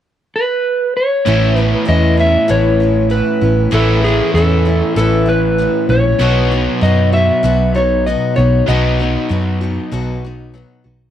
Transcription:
0.36 electric slide guitar B4
0.97 electric slide guitar C#5
1.26 picked electric bass A1, steel-string acoustic guitar A2 E3 B3 C#4 E4, overdriven electric guitar A3
1.56 steel-string acoustic guitar B3 C#4 E4, electric slide guitar B4
1.85 picked electric bass E2, steel-string acoustic guitar E3 B3 C#4 E4, electric slide guitar D#5
2.17 steel-string acoustic guitar B3 C#4 E4, electric slide guitar E5
2.48 picked electric bass A1, steel-string acoustic guitar A2 E3 B3 C#4 E4, electric slide guitar C#5
2.80 steel-string acoustic guitar B3 C#4 E4
3.10 steel-string acoustic guitar E3 B3 C#4 E4, electric slide guitar B4
3.41 picked electric bass A1, steel-string acoustic guitar B3 C#4 E4
3.71 picked electric bass A1, steel-string acoustic guitar A2 E3 B3 C#4 E4, overdriven electric guitar A3, electric slide guitar A4
4.04 steel-string acoustic guitar B3 C#4 E4, electric slide guitar G#4
4.34 picked electric bass E2, steel-string acoustic guitar E3 B3 C#4 E4, electric slide guitar A4
4.65 steel-string acoustic guitar B3 C#4 E4
4.96 picked electric bass A1, steel-string acoustic guitar A2 E3 B3 C#4 E4, electric slide guitar A4
5.26 steel-string acoustic guitar B3 C#4 E4, electric slide guitar B4
5.58 steel-string acoustic guitar E3 B3 C#4 E4
5.89 picked electric bass A#1, steel-string acoustic guitar B3 C#4 E4, electric slide guitar C#5
6.19 picked electric bass B1, steel-string acoustic guitar B2 F#3 B3 D#4 F#4
6.51 steel-string acoustic guitar B3 D#4 F#4
6.81 picked electric bass F#2, steel-string acoustic guitar F#3 B3 D#4, electric slide guitar D#5
6.85 steel-string acoustic guitar F#4
7.13 steel-string acoustic guitar B3 F#4, electric slide guitar E5
7.43 picked electric bass B1, steel-string acoustic guitar B2 F#3 B3 F#4
7.75 steel-string acoustic guitar B3 D#4 F#4, electric slide guitar C#5
8.06 steel-string acoustic guitar F#3 B3 D#4 F#4, electric slide guitar D#5
8.36 picked electric bass B1, steel-string acoustic guitar B3 D#4 F#4, electric slide guitar C#5
8.68 picked electric bass B1, steel-string acoustic guitar B2 F#3 B3 D#4 F#4, electric slide guitar D#5
8.99 steel-string acoustic guitar B3 D#4 F#4
9.29 picked electric bass F#2, steel-string acoustic guitar F#3 B3 D#4 F#4
9.61 steel-string acoustic guitar B3 D#4 F#4
9.92 picked electric bass B1, steel-string acoustic guitar B2 F#3 B3 D#4 F#4
10.25 steel-string acoustic guitar B3 D#4 F#4
10.54 steel-string acoustic guitar F#3 B3 D#4 F#4
10.84 picked electric bass B1, steel-string acoustic guitar B3 D#4 F#4

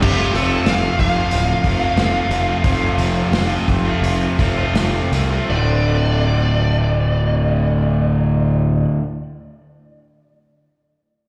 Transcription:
0.02 fingered electric bass F1, overdriven electric guitar F2 C3 F3 A3 C4 F4, lead electric guitar G4, kick, crash
0.19 snare
0.34 fingered electric bass F1, overdriven electric guitar F3 A3 C4 F4, lead electric guitar A4, open hi-hat
0.66 fingered electric bass F1, overdriven electric guitar F2 C3 F3 A3 C4 F4, lead electric guitar F5, snare, open hi-hat
0.82 overdriven electric guitar F3 A3 C4 F4
0.98 fingered electric bass F1, overdriven electric guitar C3 F3 A3 C4 F4, lead electric guitar F5, muted overdriven electric guitar stroke, kick, open hi-hat
1.02 overdriven electric guitar F2
1.15 overdriven electric guitar F3 A3 C4 F4
1.30 fingered electric bass D1, open hi-hat
1.64 fingered electric bass F1, overdriven electric guitar F3 A3 C4 F4, kick, open hi-hat
1.80 overdriven electric guitar F3 A3 C4 F4
1.96 fingered electric bass F1, overdriven electric guitar F2 C3 F3 A3 C4 F4, snare, open hi-hat
2.13 overdriven electric guitar F3 A3 C4 F4
2.29 fingered electric bass F1, overdriven electric guitar F3 A3 C4, open hi-hat
2.34 overdriven electric guitar F4
2.46 overdriven electric guitar F3 A3 C4 F4
2.63 fingered electric bass F1, overdriven electric guitar F2 C3 F3 A3 C4 F4, kick, open hi-hat
2.98 fingered electric bass F1, overdriven electric guitar F3 A3 C4, open hi-hat
3.02 overdriven electric guitar F4
3.31 fingered electric bass F1, overdriven electric guitar F2 C3 F3 A3 C4 F4, snare, open hi-hat
3.49 overdriven electric guitar F3 A3 C4 F4
3.66 fingered electric bass F1, overdriven electric guitar F2 C3 F3 A3 C4 F4, muted overdriven electric guitar stroke, kick, open hi-hat
3.85 overdriven electric guitar F3 A3 C4 F4
4.02 fingered electric bass F1, open hi-hat
4.38 fingered electric bass F1, overdriven electric guitar F3 A3 C4 F4, kick, open hi-hat
4.57 overdriven electric guitar F3 A3 C4 F4
4.74 fingered electric bass F1, overdriven electric guitar F2 C3 F3 A3 C4, snare, open hi-hat
4.78 overdriven electric guitar F4
4.93 overdriven electric guitar F3 A3 C4 F4
5.12 fingered electric bass C2, overdriven electric guitar F3 A3 C4 F4, open hi-hat
5.30 overdriven electric guitar F3 A3 C4 F4
5.49 fingered electric bass D1, overdriven electric guitar D2 A2 A3 C4 F4, lead electric guitar D5
5.53 overdriven electric guitar D3

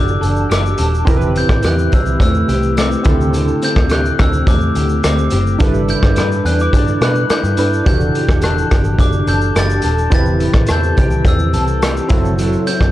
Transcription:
Already playing: picked electric bass F#1, clean electric guitar E3 D4 G4 A4, synth keys D4 F#4 G4 A4, glockenspiel D6
0.08 shaker
0.21 picked electric bass F#1, clean electric guitar A4, closed hi-hat, tambourine, shaker
0.36 shaker
0.50 picked electric bass F#1, clean electric guitar G4, glockenspiel D6, cross-stick, closed hi-hat, tambourine, shaker
0.66 shaker
0.78 picked electric bass D#1, clean electric guitar A4, closed hi-hat, tambourine, shaker
0.94 shaker
1.05 clean electric guitar E3, synth keys C4 E4 G4, kick, closed hi-hat, shaker
1.10 synth keys A#4
1.17 synth keys B4
1.21 shaker
1.35 clean electric guitar C4, glockenspiel G6, closed hi-hat, shaker
1.49 picked electric bass A1, kick, cross-stick, shaker
1.62 picked electric bass E2, clean electric guitar G4, glockenspiel F#6, cross-stick, closed hi-hat, tambourine, shaker
1.79 shaker
1.92 picked electric bass C2, clean electric guitar C4, glockenspiel E6, kick, closed hi-hat, tambourine, shaker
2.06 shaker
2.20 picked electric bass E2, clean electric guitar A3, glockenspiel E6, kick, closed hi-hat, tambourine, shaker
2.34 shaker
2.49 picked electric bass C2, clean electric guitar G4, closed hi-hat, tambourine, shaker
2.63 shaker
2.77 clean electric guitar C4, glockenspiel D6, cross-stick, closed hi-hat, tambourine, shaker
2.92 shaker
3.03 picked electric bass D2, clean electric guitar D3, synth keys C4 E4 G4, kick, closed hi-hat, tambourine, shaker
3.09 synth keys A4
3.21 shaker
3.33 clean electric guitar D3, closed hi-hat, tambourine, shaker
3.48 shaker
3.62 clean electric guitar C4, glockenspiel G6, closed hi-hat, tambourine, shaker
3.76 picked electric bass D2, kick, cross-stick, shaker
3.89 clean electric guitar G4, glockenspiel F#6, cross-stick, closed hi-hat, tambourine, shaker
4.06 shaker
4.19 picked electric bass D2, clean electric guitar C4, glockenspiel E6, kick, cross-stick, closed hi-hat, tambourine, shaker
4.33 shaker
4.47 picked electric bass E2, clean electric guitar A3, glockenspiel D6, kick, closed hi-hat, tambourine, shaker
4.61 shaker
4.75 picked electric bass D2, clean electric guitar G4, closed hi-hat, tambourine, shaker
4.89 shaker
5.04 picked electric bass D2, clean electric guitar C4, glockenspiel D6, cross-stick, closed hi-hat, tambourine, shaker
5.18 shaker
5.30 picked electric bass F#1, clean electric guitar G4, closed hi-hat, tambourine, shaker
5.47 shaker
5.59 picked electric bass G1, clean electric guitar G3, synth keys D4 E4 A4, kick, closed hi-hat, tambourine, shaker
5.64 synth keys B4
5.74 shaker
5.88 clean electric guitar E4, glockenspiel G6, closed hi-hat, tambourine, shaker
6.03 picked electric bass G1, kick, cross-stick, shaker
6.16 picked electric bass G2, clean electric guitar B4, cross-stick, closed hi-hat, tambourine, shaker
6.32 shaker
6.45 picked electric bass E2, clean electric guitar D4, glockenspiel F#6, closed hi-hat, tambourine, shaker
6.59 clean electric guitar E4, glockenspiel D6, shaker
6.73 picked electric bass G2, clean electric guitar D4, kick, closed hi-hat, tambourine, shaker
6.87 shaker
7.01 picked electric bass B2, clean electric guitar B4, glockenspiel F#6, cross-stick, closed hi-hat, tambourine, shaker
7.15 shaker
7.30 clean electric guitar E4, glockenspiel G6, muted picked electric bass stroke, cross-stick, closed hi-hat, tambourine, shaker
7.44 picked electric bass G2, shaker
7.57 picked electric bass G2, synth keys D4 E4 A4 B4, clean electric guitar B4, closed hi-hat, tambourine, shaker
7.73 shaker
7.84 picked electric bass E1, clean electric guitar E3, synth keys D4 F#4 G4, glockenspiel G6, kick, closed hi-hat, shaker
7.89 synth keys A4
8.01 shaker
8.15 clean electric guitar G4, closed hi-hat, shaker
8.29 picked electric bass E1, kick, cross-stick, shaker
8.42 clean electric guitar A4, glockenspiel F#6, cross-stick, closed hi-hat, tambourine, shaker
8.58 shaker
8.71 picked electric bass G1, clean electric guitar G4, kick, cross-stick, closed hi-hat, tambourine, shaker
8.84 shaker
8.99 picked electric bass F#1, clean electric guitar D4, glockenspiel D6, kick, closed hi-hat, tambourine, shaker
9.12 shaker
9.27 picked electric bass F#1, clean electric guitar A4, glockenspiel G6, closed hi-hat, tambourine, shaker
9.41 shaker
9.55 picked electric bass F#1, clean electric guitar G4, glockenspiel A6, cross-stick, closed hi-hat, tambourine, shaker
9.70 shaker
9.82 picked electric bass D#1, clean electric guitar A4, closed hi-hat, tambourine, shaker
9.98 shaker
10.10 picked electric bass E1, clean electric guitar E3, synth keys C4 E4 G4, kick, closed hi-hat, tambourine, shaker
10.15 synth keys B4, glockenspiel A6
10.25 shaker
10.40 clean electric guitar G4, closed hi-hat, shaker
10.54 picked electric bass A1, kick, cross-stick, shaker
10.67 picked electric bass E2, clean electric guitar A4, cross-stick, closed hi-hat, tambourine, shaker
10.72 glockenspiel G6
10.84 shaker
10.97 picked electric bass C2, clean electric guitar G4, kick, closed hi-hat, tambourine, shaker
11.11 shaker
11.25 picked electric bass E2, clean electric guitar C4, glockenspiel E6, kick, closed hi-hat, tambourine, shaker
11.39 shaker
11.53 picked electric bass C2, clean electric guitar A4, closed hi-hat, tambourine, shaker
11.68 shaker
11.82 clean electric guitar G4, cross-stick, closed hi-hat, tambourine, shaker
11.97 shaker
12.08 picked electric bass F#1, clean electric guitar F#3, synth keys C4 E4 F#4, kick, closed hi-hat, tambourine, shaker
12.13 synth keys A4
12.25 shaker
12.38 clean electric guitar F#3, closed hi-hat, tambourine, shaker
12.53 shaker
12.67 clean electric guitar E4, glockenspiel G6, closed hi-hat, tambourine, shaker
12.81 picked electric bass F#1, kick, cross-stick, shaker

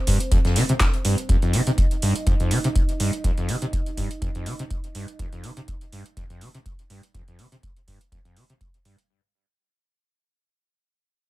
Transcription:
Already playing: analog synth pad C5
0.07 acid bass G2, kick, closed hi-hat, open hi-hat
0.20 closed hi-hat
0.31 acid bass F2, kick, closed hi-hat
0.45 acid bass F2, snare, closed hi-hat
0.56 acid bass C3, snare, closed hi-hat, open hi-hat
0.69 acid bass C3, closed hi-hat
0.80 kick, snare, clap, closed hi-hat
0.94 closed hi-hat
1.05 acid bass G2, closed hi-hat, open hi-hat
1.18 closed hi-hat
1.29 acid bass F2, analog synth pad D#5, kick, closed hi-hat
1.42 acid bass F2, closed hi-hat
1.53 acid bass C3, open hi-hat
1.67 acid bass C3, closed hi-hat
1.78 kick, closed hi-hat
1.91 closed hi-hat
2.02 acid bass G2, open hi-hat
2.16 closed hi-hat
2.27 acid bass F2, kick, closed hi-hat
2.40 acid bass F2, closed hi-hat
2.51 acid bass C3, open hi-hat
2.64 acid bass C3, closed hi-hat
2.75 kick, closed hi-hat
2.89 closed hi-hat
3.00 acid bass G2, open hi-hat
3.13 closed hi-hat
3.24 acid bass F2, kick, closed hi-hat
3.38 acid bass F2, closed hi-hat
3.49 acid bass C3, open hi-hat
3.62 acid bass C3, closed hi-hat
3.73 kick, closed hi-hat
3.86 closed hi-hat
3.97 acid bass G2, kick, open hi-hat
4.11 closed hi-hat
4.22 acid bass F2, kick, closed hi-hat
4.35 acid bass F2, closed hi-hat
4.46 acid bass C3, open hi-hat
4.59 acid bass C3, closed hi-hat
4.70 kick, closed hi-hat
4.84 closed hi-hat
4.95 acid bass G2, open hi-hat
5.08 closed hi-hat
5.19 acid bass F2, kick, closed hi-hat
5.33 acid bass F2, closed hi-hat
5.44 acid bass C3, open hi-hat
5.57 acid bass C3, closed hi-hat
5.68 kick, closed hi-hat
5.81 closed hi-hat
5.92 acid bass G2, open hi-hat
6.06 closed hi-hat
6.17 acid bass F2, kick, closed hi-hat
6.30 acid bass F2, closed hi-hat
6.41 acid bass C3, open hi-hat
6.54 acid bass C3, closed hi-hat
6.66 kick, closed hi-hat
6.79 closed hi-hat
6.90 acid bass G2, open hi-hat
7.03 closed hi-hat
7.14 acid bass F2, kick, closed hi-hat
7.28 acid bass F2, closed hi-hat
7.39 acid bass C3, open hi-hat
7.52 acid bass C3, closed hi-hat
7.63 kick, closed hi-hat
7.77 closed hi-hat
7.88 acid bass G2, kick, open hi-hat
8.01 closed hi-hat
8.12 acid bass F2, kick, closed hi-hat
8.25 acid bass F2, closed hi-hat
8.36 acid bass C3, open hi-hat
8.50 acid bass C3, closed hi-hat
8.61 kick, closed hi-hat
8.74 closed hi-hat
8.85 acid bass G2, open hi-hat
8.98 closed hi-hat

